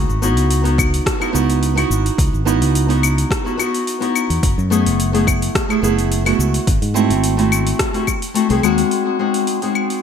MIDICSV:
0, 0, Header, 1, 4, 480
1, 0, Start_track
1, 0, Key_signature, 4, "minor"
1, 0, Tempo, 560748
1, 1873, Time_signature, 4, 2, 24, 8
1, 8577, End_track
2, 0, Start_track
2, 0, Title_t, "Nylon-string guitar"
2, 0, Program_c, 0, 24
2, 0, Note_on_c, 0, 59, 93
2, 0, Note_on_c, 0, 63, 90
2, 0, Note_on_c, 0, 64, 83
2, 0, Note_on_c, 0, 66, 101
2, 161, Note_off_c, 0, 59, 0
2, 163, Note_off_c, 0, 63, 0
2, 165, Note_off_c, 0, 64, 0
2, 167, Note_off_c, 0, 66, 0
2, 187, Note_on_c, 0, 59, 94
2, 188, Note_on_c, 0, 63, 82
2, 195, Note_on_c, 0, 64, 82
2, 200, Note_on_c, 0, 66, 111
2, 525, Note_off_c, 0, 59, 0
2, 527, Note_off_c, 0, 63, 0
2, 530, Note_off_c, 0, 64, 0
2, 532, Note_off_c, 0, 66, 0
2, 543, Note_on_c, 0, 59, 78
2, 548, Note_on_c, 0, 63, 70
2, 553, Note_on_c, 0, 64, 72
2, 558, Note_on_c, 0, 66, 81
2, 1001, Note_off_c, 0, 59, 0
2, 1003, Note_off_c, 0, 63, 0
2, 1006, Note_off_c, 0, 64, 0
2, 1008, Note_off_c, 0, 66, 0
2, 1024, Note_on_c, 0, 59, 77
2, 1031, Note_on_c, 0, 63, 76
2, 1037, Note_on_c, 0, 66, 85
2, 1038, Note_on_c, 0, 64, 72
2, 1123, Note_off_c, 0, 59, 0
2, 1126, Note_off_c, 0, 63, 0
2, 1128, Note_off_c, 0, 64, 0
2, 1129, Note_off_c, 0, 66, 0
2, 1135, Note_on_c, 0, 59, 84
2, 1140, Note_on_c, 0, 63, 79
2, 1143, Note_on_c, 0, 64, 74
2, 1149, Note_on_c, 0, 66, 94
2, 1480, Note_off_c, 0, 59, 0
2, 1482, Note_off_c, 0, 63, 0
2, 1484, Note_off_c, 0, 64, 0
2, 1487, Note_off_c, 0, 66, 0
2, 1501, Note_on_c, 0, 59, 81
2, 1509, Note_on_c, 0, 63, 70
2, 1518, Note_on_c, 0, 64, 74
2, 1526, Note_on_c, 0, 66, 89
2, 2076, Note_off_c, 0, 59, 0
2, 2081, Note_off_c, 0, 63, 0
2, 2085, Note_off_c, 0, 64, 0
2, 2089, Note_off_c, 0, 66, 0
2, 2100, Note_on_c, 0, 59, 89
2, 2105, Note_on_c, 0, 63, 87
2, 2111, Note_on_c, 0, 64, 90
2, 2112, Note_on_c, 0, 66, 108
2, 2443, Note_off_c, 0, 59, 0
2, 2445, Note_off_c, 0, 63, 0
2, 2447, Note_off_c, 0, 64, 0
2, 2448, Note_off_c, 0, 66, 0
2, 2468, Note_on_c, 0, 59, 80
2, 2473, Note_on_c, 0, 63, 73
2, 2476, Note_on_c, 0, 64, 69
2, 2482, Note_on_c, 0, 66, 85
2, 2923, Note_off_c, 0, 59, 0
2, 2926, Note_off_c, 0, 63, 0
2, 2927, Note_off_c, 0, 64, 0
2, 2930, Note_off_c, 0, 66, 0
2, 2947, Note_on_c, 0, 59, 80
2, 2953, Note_on_c, 0, 63, 72
2, 2957, Note_on_c, 0, 64, 76
2, 2962, Note_on_c, 0, 66, 86
2, 3044, Note_off_c, 0, 59, 0
2, 3047, Note_off_c, 0, 63, 0
2, 3049, Note_off_c, 0, 64, 0
2, 3051, Note_off_c, 0, 66, 0
2, 3060, Note_on_c, 0, 59, 88
2, 3066, Note_on_c, 0, 63, 83
2, 3070, Note_on_c, 0, 64, 82
2, 3075, Note_on_c, 0, 66, 97
2, 3402, Note_off_c, 0, 59, 0
2, 3405, Note_off_c, 0, 63, 0
2, 3406, Note_off_c, 0, 64, 0
2, 3410, Note_off_c, 0, 66, 0
2, 3427, Note_on_c, 0, 59, 73
2, 3431, Note_on_c, 0, 63, 73
2, 3436, Note_on_c, 0, 64, 72
2, 3442, Note_on_c, 0, 66, 83
2, 3773, Note_off_c, 0, 59, 0
2, 3775, Note_off_c, 0, 63, 0
2, 3778, Note_off_c, 0, 64, 0
2, 3781, Note_off_c, 0, 66, 0
2, 4024, Note_on_c, 0, 57, 97
2, 4030, Note_on_c, 0, 59, 90
2, 4032, Note_on_c, 0, 64, 91
2, 4038, Note_on_c, 0, 68, 106
2, 4365, Note_off_c, 0, 57, 0
2, 4367, Note_off_c, 0, 59, 0
2, 4368, Note_off_c, 0, 64, 0
2, 4371, Note_off_c, 0, 68, 0
2, 4392, Note_on_c, 0, 57, 78
2, 4398, Note_on_c, 0, 59, 72
2, 4404, Note_on_c, 0, 64, 75
2, 4404, Note_on_c, 0, 68, 87
2, 4845, Note_off_c, 0, 57, 0
2, 4848, Note_off_c, 0, 59, 0
2, 4850, Note_off_c, 0, 64, 0
2, 4851, Note_off_c, 0, 68, 0
2, 4871, Note_on_c, 0, 57, 87
2, 4875, Note_on_c, 0, 59, 76
2, 4883, Note_on_c, 0, 64, 73
2, 4887, Note_on_c, 0, 68, 94
2, 4966, Note_off_c, 0, 57, 0
2, 4969, Note_off_c, 0, 59, 0
2, 4971, Note_off_c, 0, 64, 0
2, 4974, Note_off_c, 0, 68, 0
2, 4981, Note_on_c, 0, 57, 88
2, 4987, Note_on_c, 0, 59, 82
2, 4992, Note_on_c, 0, 64, 80
2, 4996, Note_on_c, 0, 68, 95
2, 5323, Note_off_c, 0, 57, 0
2, 5326, Note_off_c, 0, 59, 0
2, 5328, Note_off_c, 0, 64, 0
2, 5330, Note_off_c, 0, 68, 0
2, 5351, Note_on_c, 0, 57, 80
2, 5355, Note_on_c, 0, 59, 67
2, 5358, Note_on_c, 0, 64, 75
2, 5365, Note_on_c, 0, 66, 88
2, 5695, Note_off_c, 0, 57, 0
2, 5697, Note_off_c, 0, 59, 0
2, 5699, Note_off_c, 0, 64, 0
2, 5702, Note_off_c, 0, 66, 0
2, 5941, Note_on_c, 0, 57, 93
2, 5945, Note_on_c, 0, 60, 88
2, 5950, Note_on_c, 0, 64, 84
2, 5954, Note_on_c, 0, 66, 113
2, 6283, Note_off_c, 0, 57, 0
2, 6285, Note_off_c, 0, 60, 0
2, 6287, Note_off_c, 0, 64, 0
2, 6289, Note_off_c, 0, 66, 0
2, 6308, Note_on_c, 0, 57, 84
2, 6312, Note_on_c, 0, 60, 73
2, 6319, Note_on_c, 0, 64, 72
2, 6323, Note_on_c, 0, 66, 91
2, 6763, Note_off_c, 0, 57, 0
2, 6765, Note_off_c, 0, 60, 0
2, 6769, Note_off_c, 0, 64, 0
2, 6771, Note_off_c, 0, 66, 0
2, 6790, Note_on_c, 0, 57, 80
2, 6796, Note_on_c, 0, 60, 76
2, 6802, Note_on_c, 0, 66, 86
2, 6803, Note_on_c, 0, 64, 74
2, 6886, Note_off_c, 0, 57, 0
2, 6888, Note_off_c, 0, 60, 0
2, 6891, Note_off_c, 0, 64, 0
2, 6892, Note_off_c, 0, 66, 0
2, 7141, Note_on_c, 0, 57, 88
2, 7148, Note_on_c, 0, 60, 77
2, 7154, Note_on_c, 0, 64, 73
2, 7158, Note_on_c, 0, 66, 99
2, 7243, Note_off_c, 0, 57, 0
2, 7247, Note_off_c, 0, 60, 0
2, 7248, Note_off_c, 0, 64, 0
2, 7251, Note_off_c, 0, 66, 0
2, 7268, Note_on_c, 0, 57, 85
2, 7273, Note_on_c, 0, 60, 82
2, 7278, Note_on_c, 0, 64, 77
2, 7281, Note_on_c, 0, 68, 96
2, 7360, Note_off_c, 0, 57, 0
2, 7363, Note_off_c, 0, 60, 0
2, 7364, Note_off_c, 0, 64, 0
2, 7367, Note_off_c, 0, 68, 0
2, 7387, Note_on_c, 0, 56, 94
2, 7393, Note_on_c, 0, 60, 88
2, 7397, Note_on_c, 0, 63, 89
2, 7401, Note_on_c, 0, 66, 110
2, 7843, Note_off_c, 0, 56, 0
2, 7845, Note_off_c, 0, 60, 0
2, 7848, Note_off_c, 0, 63, 0
2, 7850, Note_off_c, 0, 66, 0
2, 7869, Note_on_c, 0, 56, 80
2, 7873, Note_on_c, 0, 60, 79
2, 7877, Note_on_c, 0, 63, 78
2, 7883, Note_on_c, 0, 66, 93
2, 8207, Note_off_c, 0, 56, 0
2, 8209, Note_off_c, 0, 60, 0
2, 8211, Note_off_c, 0, 63, 0
2, 8214, Note_off_c, 0, 66, 0
2, 8235, Note_on_c, 0, 56, 68
2, 8238, Note_on_c, 0, 60, 64
2, 8243, Note_on_c, 0, 63, 61
2, 8251, Note_on_c, 0, 66, 75
2, 8577, Note_off_c, 0, 56, 0
2, 8577, Note_off_c, 0, 60, 0
2, 8577, Note_off_c, 0, 63, 0
2, 8577, Note_off_c, 0, 66, 0
2, 8577, End_track
3, 0, Start_track
3, 0, Title_t, "Fingered electric bass"
3, 0, Program_c, 1, 33
3, 77, Note_on_c, 1, 32, 93
3, 316, Note_off_c, 1, 32, 0
3, 316, Note_on_c, 1, 37, 67
3, 847, Note_off_c, 1, 37, 0
3, 1152, Note_on_c, 1, 37, 84
3, 1568, Note_off_c, 1, 37, 0
3, 1628, Note_on_c, 1, 32, 88
3, 1791, Note_off_c, 1, 32, 0
3, 1869, Note_on_c, 1, 37, 99
3, 1953, Note_off_c, 1, 37, 0
3, 1998, Note_on_c, 1, 32, 95
3, 2239, Note_off_c, 1, 32, 0
3, 2239, Note_on_c, 1, 37, 72
3, 2769, Note_off_c, 1, 37, 0
3, 3681, Note_on_c, 1, 40, 74
3, 3754, Note_off_c, 1, 40, 0
3, 3792, Note_on_c, 1, 30, 95
3, 3874, Note_off_c, 1, 30, 0
3, 3920, Note_on_c, 1, 42, 100
3, 4159, Note_on_c, 1, 30, 71
3, 4172, Note_off_c, 1, 42, 0
3, 4689, Note_off_c, 1, 30, 0
3, 4990, Note_on_c, 1, 30, 80
3, 5407, Note_off_c, 1, 30, 0
3, 5469, Note_on_c, 1, 37, 92
3, 5631, Note_off_c, 1, 37, 0
3, 5713, Note_on_c, 1, 32, 95
3, 5795, Note_off_c, 1, 32, 0
3, 5837, Note_on_c, 1, 44, 97
3, 6076, Note_on_c, 1, 32, 70
3, 6089, Note_off_c, 1, 44, 0
3, 6607, Note_off_c, 1, 32, 0
3, 7279, Note_on_c, 1, 36, 99
3, 7353, Note_off_c, 1, 36, 0
3, 7391, Note_on_c, 1, 39, 99
3, 7552, Note_off_c, 1, 39, 0
3, 8577, End_track
4, 0, Start_track
4, 0, Title_t, "Drums"
4, 84, Note_on_c, 9, 69, 20
4, 169, Note_off_c, 9, 69, 0
4, 194, Note_on_c, 9, 69, 76
4, 280, Note_off_c, 9, 69, 0
4, 318, Note_on_c, 9, 46, 41
4, 322, Note_on_c, 9, 69, 35
4, 403, Note_off_c, 9, 46, 0
4, 408, Note_off_c, 9, 69, 0
4, 432, Note_on_c, 9, 46, 51
4, 437, Note_on_c, 9, 69, 42
4, 518, Note_off_c, 9, 46, 0
4, 523, Note_off_c, 9, 69, 0
4, 559, Note_on_c, 9, 46, 29
4, 564, Note_on_c, 9, 69, 21
4, 645, Note_off_c, 9, 46, 0
4, 650, Note_off_c, 9, 69, 0
4, 670, Note_on_c, 9, 36, 95
4, 676, Note_on_c, 9, 75, 78
4, 680, Note_on_c, 9, 69, 77
4, 756, Note_off_c, 9, 36, 0
4, 761, Note_off_c, 9, 75, 0
4, 766, Note_off_c, 9, 69, 0
4, 803, Note_on_c, 9, 46, 42
4, 808, Note_on_c, 9, 69, 29
4, 889, Note_off_c, 9, 46, 0
4, 893, Note_off_c, 9, 69, 0
4, 910, Note_on_c, 9, 36, 103
4, 913, Note_on_c, 9, 37, 65
4, 913, Note_on_c, 9, 46, 48
4, 917, Note_on_c, 9, 69, 39
4, 995, Note_off_c, 9, 36, 0
4, 998, Note_off_c, 9, 37, 0
4, 998, Note_off_c, 9, 46, 0
4, 1003, Note_off_c, 9, 69, 0
4, 1041, Note_on_c, 9, 75, 76
4, 1046, Note_on_c, 9, 69, 21
4, 1127, Note_off_c, 9, 75, 0
4, 1131, Note_off_c, 9, 69, 0
4, 1157, Note_on_c, 9, 69, 77
4, 1243, Note_off_c, 9, 69, 0
4, 1281, Note_on_c, 9, 46, 40
4, 1285, Note_on_c, 9, 69, 32
4, 1366, Note_off_c, 9, 46, 0
4, 1371, Note_off_c, 9, 69, 0
4, 1393, Note_on_c, 9, 46, 49
4, 1397, Note_on_c, 9, 69, 39
4, 1478, Note_off_c, 9, 46, 0
4, 1483, Note_off_c, 9, 69, 0
4, 1520, Note_on_c, 9, 46, 29
4, 1520, Note_on_c, 9, 75, 75
4, 1524, Note_on_c, 9, 69, 21
4, 1606, Note_off_c, 9, 46, 0
4, 1606, Note_off_c, 9, 75, 0
4, 1610, Note_off_c, 9, 69, 0
4, 1638, Note_on_c, 9, 69, 67
4, 1724, Note_off_c, 9, 69, 0
4, 1763, Note_on_c, 9, 46, 39
4, 1767, Note_on_c, 9, 69, 32
4, 1848, Note_off_c, 9, 46, 0
4, 1853, Note_off_c, 9, 69, 0
4, 1869, Note_on_c, 9, 36, 113
4, 1874, Note_on_c, 9, 46, 52
4, 1879, Note_on_c, 9, 69, 39
4, 1955, Note_off_c, 9, 36, 0
4, 1960, Note_off_c, 9, 46, 0
4, 1964, Note_off_c, 9, 69, 0
4, 2007, Note_on_c, 9, 69, 19
4, 2092, Note_off_c, 9, 69, 0
4, 2119, Note_on_c, 9, 69, 72
4, 2205, Note_off_c, 9, 69, 0
4, 2242, Note_on_c, 9, 46, 43
4, 2246, Note_on_c, 9, 69, 32
4, 2327, Note_off_c, 9, 46, 0
4, 2332, Note_off_c, 9, 69, 0
4, 2357, Note_on_c, 9, 46, 53
4, 2361, Note_on_c, 9, 69, 41
4, 2442, Note_off_c, 9, 46, 0
4, 2447, Note_off_c, 9, 69, 0
4, 2483, Note_on_c, 9, 46, 29
4, 2488, Note_on_c, 9, 69, 20
4, 2569, Note_off_c, 9, 46, 0
4, 2573, Note_off_c, 9, 69, 0
4, 2596, Note_on_c, 9, 75, 80
4, 2601, Note_on_c, 9, 69, 73
4, 2682, Note_off_c, 9, 75, 0
4, 2686, Note_off_c, 9, 69, 0
4, 2724, Note_on_c, 9, 46, 41
4, 2729, Note_on_c, 9, 69, 28
4, 2810, Note_off_c, 9, 46, 0
4, 2815, Note_off_c, 9, 69, 0
4, 2830, Note_on_c, 9, 36, 107
4, 2839, Note_on_c, 9, 37, 64
4, 2839, Note_on_c, 9, 46, 50
4, 2843, Note_on_c, 9, 69, 39
4, 2916, Note_off_c, 9, 36, 0
4, 2924, Note_off_c, 9, 37, 0
4, 2924, Note_off_c, 9, 46, 0
4, 2929, Note_off_c, 9, 69, 0
4, 2968, Note_on_c, 9, 69, 20
4, 3054, Note_off_c, 9, 69, 0
4, 3077, Note_on_c, 9, 75, 76
4, 3082, Note_on_c, 9, 69, 72
4, 3163, Note_off_c, 9, 75, 0
4, 3167, Note_off_c, 9, 69, 0
4, 3206, Note_on_c, 9, 46, 43
4, 3210, Note_on_c, 9, 69, 30
4, 3291, Note_off_c, 9, 46, 0
4, 3296, Note_off_c, 9, 69, 0
4, 3316, Note_on_c, 9, 46, 51
4, 3320, Note_on_c, 9, 69, 39
4, 3401, Note_off_c, 9, 46, 0
4, 3406, Note_off_c, 9, 69, 0
4, 3442, Note_on_c, 9, 46, 31
4, 3447, Note_on_c, 9, 69, 21
4, 3528, Note_off_c, 9, 46, 0
4, 3532, Note_off_c, 9, 69, 0
4, 3557, Note_on_c, 9, 75, 73
4, 3561, Note_on_c, 9, 69, 67
4, 3642, Note_off_c, 9, 75, 0
4, 3647, Note_off_c, 9, 69, 0
4, 3684, Note_on_c, 9, 46, 40
4, 3688, Note_on_c, 9, 69, 29
4, 3769, Note_off_c, 9, 46, 0
4, 3774, Note_off_c, 9, 69, 0
4, 3792, Note_on_c, 9, 36, 109
4, 3794, Note_on_c, 9, 46, 53
4, 3798, Note_on_c, 9, 69, 40
4, 3877, Note_off_c, 9, 36, 0
4, 3880, Note_off_c, 9, 46, 0
4, 3884, Note_off_c, 9, 69, 0
4, 3927, Note_on_c, 9, 69, 19
4, 4012, Note_off_c, 9, 69, 0
4, 4042, Note_on_c, 9, 69, 72
4, 4127, Note_off_c, 9, 69, 0
4, 4164, Note_on_c, 9, 46, 48
4, 4168, Note_on_c, 9, 69, 31
4, 4250, Note_off_c, 9, 46, 0
4, 4254, Note_off_c, 9, 69, 0
4, 4277, Note_on_c, 9, 46, 52
4, 4282, Note_on_c, 9, 69, 38
4, 4363, Note_off_c, 9, 46, 0
4, 4368, Note_off_c, 9, 69, 0
4, 4405, Note_on_c, 9, 46, 31
4, 4410, Note_on_c, 9, 69, 19
4, 4491, Note_off_c, 9, 46, 0
4, 4496, Note_off_c, 9, 69, 0
4, 4513, Note_on_c, 9, 36, 97
4, 4516, Note_on_c, 9, 75, 80
4, 4521, Note_on_c, 9, 69, 70
4, 4598, Note_off_c, 9, 36, 0
4, 4602, Note_off_c, 9, 75, 0
4, 4607, Note_off_c, 9, 69, 0
4, 4642, Note_on_c, 9, 46, 43
4, 4647, Note_on_c, 9, 69, 28
4, 4728, Note_off_c, 9, 46, 0
4, 4732, Note_off_c, 9, 69, 0
4, 4753, Note_on_c, 9, 36, 110
4, 4754, Note_on_c, 9, 37, 74
4, 4754, Note_on_c, 9, 46, 53
4, 4759, Note_on_c, 9, 69, 39
4, 4838, Note_off_c, 9, 36, 0
4, 4840, Note_off_c, 9, 37, 0
4, 4840, Note_off_c, 9, 46, 0
4, 4844, Note_off_c, 9, 69, 0
4, 4881, Note_on_c, 9, 75, 77
4, 4886, Note_on_c, 9, 69, 20
4, 4967, Note_off_c, 9, 75, 0
4, 4971, Note_off_c, 9, 69, 0
4, 4999, Note_on_c, 9, 69, 71
4, 5085, Note_off_c, 9, 69, 0
4, 5123, Note_on_c, 9, 46, 41
4, 5128, Note_on_c, 9, 69, 32
4, 5209, Note_off_c, 9, 46, 0
4, 5213, Note_off_c, 9, 69, 0
4, 5235, Note_on_c, 9, 46, 52
4, 5240, Note_on_c, 9, 69, 41
4, 5321, Note_off_c, 9, 46, 0
4, 5325, Note_off_c, 9, 69, 0
4, 5361, Note_on_c, 9, 46, 32
4, 5361, Note_on_c, 9, 75, 84
4, 5366, Note_on_c, 9, 69, 20
4, 5447, Note_off_c, 9, 46, 0
4, 5447, Note_off_c, 9, 75, 0
4, 5451, Note_off_c, 9, 69, 0
4, 5479, Note_on_c, 9, 69, 70
4, 5565, Note_off_c, 9, 69, 0
4, 5600, Note_on_c, 9, 46, 45
4, 5605, Note_on_c, 9, 69, 31
4, 5686, Note_off_c, 9, 46, 0
4, 5691, Note_off_c, 9, 69, 0
4, 5712, Note_on_c, 9, 36, 114
4, 5713, Note_on_c, 9, 46, 53
4, 5717, Note_on_c, 9, 69, 39
4, 5798, Note_off_c, 9, 36, 0
4, 5798, Note_off_c, 9, 46, 0
4, 5803, Note_off_c, 9, 69, 0
4, 5840, Note_on_c, 9, 46, 31
4, 5845, Note_on_c, 9, 69, 19
4, 5926, Note_off_c, 9, 46, 0
4, 5930, Note_off_c, 9, 69, 0
4, 5958, Note_on_c, 9, 69, 71
4, 6044, Note_off_c, 9, 69, 0
4, 6082, Note_on_c, 9, 46, 46
4, 6086, Note_on_c, 9, 69, 34
4, 6167, Note_off_c, 9, 46, 0
4, 6172, Note_off_c, 9, 69, 0
4, 6194, Note_on_c, 9, 46, 56
4, 6198, Note_on_c, 9, 69, 41
4, 6279, Note_off_c, 9, 46, 0
4, 6284, Note_off_c, 9, 69, 0
4, 6324, Note_on_c, 9, 46, 32
4, 6328, Note_on_c, 9, 69, 20
4, 6410, Note_off_c, 9, 46, 0
4, 6414, Note_off_c, 9, 69, 0
4, 6437, Note_on_c, 9, 75, 77
4, 6441, Note_on_c, 9, 69, 78
4, 6522, Note_off_c, 9, 75, 0
4, 6527, Note_off_c, 9, 69, 0
4, 6562, Note_on_c, 9, 46, 45
4, 6567, Note_on_c, 9, 69, 29
4, 6648, Note_off_c, 9, 46, 0
4, 6652, Note_off_c, 9, 69, 0
4, 6672, Note_on_c, 9, 37, 76
4, 6672, Note_on_c, 9, 46, 55
4, 6673, Note_on_c, 9, 36, 108
4, 6676, Note_on_c, 9, 69, 42
4, 6757, Note_off_c, 9, 37, 0
4, 6757, Note_off_c, 9, 46, 0
4, 6759, Note_off_c, 9, 36, 0
4, 6762, Note_off_c, 9, 69, 0
4, 6800, Note_on_c, 9, 46, 31
4, 6805, Note_on_c, 9, 69, 21
4, 6886, Note_off_c, 9, 46, 0
4, 6890, Note_off_c, 9, 69, 0
4, 6910, Note_on_c, 9, 75, 72
4, 6913, Note_on_c, 9, 36, 53
4, 6915, Note_on_c, 9, 69, 74
4, 6996, Note_off_c, 9, 75, 0
4, 6999, Note_off_c, 9, 36, 0
4, 7000, Note_off_c, 9, 69, 0
4, 7039, Note_on_c, 9, 46, 45
4, 7043, Note_on_c, 9, 69, 31
4, 7124, Note_off_c, 9, 46, 0
4, 7129, Note_off_c, 9, 69, 0
4, 7151, Note_on_c, 9, 46, 56
4, 7156, Note_on_c, 9, 69, 44
4, 7237, Note_off_c, 9, 46, 0
4, 7241, Note_off_c, 9, 69, 0
4, 7276, Note_on_c, 9, 46, 32
4, 7281, Note_on_c, 9, 69, 21
4, 7362, Note_off_c, 9, 46, 0
4, 7366, Note_off_c, 9, 69, 0
4, 7391, Note_on_c, 9, 75, 73
4, 7395, Note_on_c, 9, 69, 69
4, 7476, Note_off_c, 9, 75, 0
4, 7481, Note_off_c, 9, 69, 0
4, 7515, Note_on_c, 9, 46, 45
4, 7520, Note_on_c, 9, 69, 29
4, 7601, Note_off_c, 9, 46, 0
4, 7605, Note_off_c, 9, 69, 0
4, 7630, Note_on_c, 9, 46, 46
4, 7716, Note_off_c, 9, 46, 0
4, 7996, Note_on_c, 9, 46, 41
4, 8082, Note_off_c, 9, 46, 0
4, 8108, Note_on_c, 9, 46, 51
4, 8194, Note_off_c, 9, 46, 0
4, 8236, Note_on_c, 9, 46, 27
4, 8322, Note_off_c, 9, 46, 0
4, 8348, Note_on_c, 9, 75, 68
4, 8434, Note_off_c, 9, 75, 0
4, 8476, Note_on_c, 9, 46, 35
4, 8562, Note_off_c, 9, 46, 0
4, 8577, End_track
0, 0, End_of_file